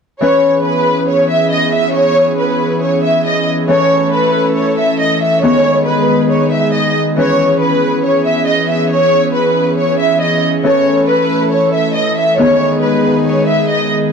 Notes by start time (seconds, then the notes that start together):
0.21 E3 B3 C#4 G#4 B4 C#5
0.65 B4
1.09 C#5
1.30 E5
1.52 D#5
1.74 E5
1.95 C#5
2.39 B4
2.83 C#5
3.04 E5
3.26 D#5
3.68 E3 A3 C#4 A4 C#5
4.13 B4
4.56 C#5
4.78 E5
5.00 D#5
5.22 E5
5.42 D#3 G#3 B3 G#4 C#5
5.87 B4
6.30 C#5
6.52 E5
6.74 D#5
7.16 E3 B3 C#4 B4 C#5
7.60 B4
8.04 C#5
8.26 E5
8.47 D#5
8.69 E5
8.91 C#5
9.34 B4
9.78 C#5
10.00 E5
10.21 D#5
10.63 E3 A3 C#4 A4 C#5
11.09 B4
11.52 C#5
11.73 E5
11.95 D#5
12.18 E5
12.38 D#3 G#3 B3 G#4 C#5
12.82 B4
13.26 C#5
13.48 E5
13.69 D#5